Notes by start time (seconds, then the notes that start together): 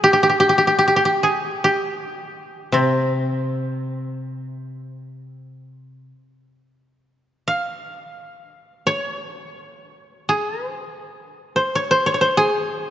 0.04 G4
0.13 G4
0.23 G4
0.30 G4
0.40 G4
0.49 G4
0.58 G4
0.67 G4
0.79 G4
0.88 G4
0.96 G4
1.05 G4
1.23 G#4
1.64 G4
2.72 C3 C4
7.48 F5
8.87 C#5
10.29 G#4
10.68 C5
11.56 C5
11.75 C#5
11.91 C5
12.06 C#5
12.14 C#5
12.21 C5
12.37 G#4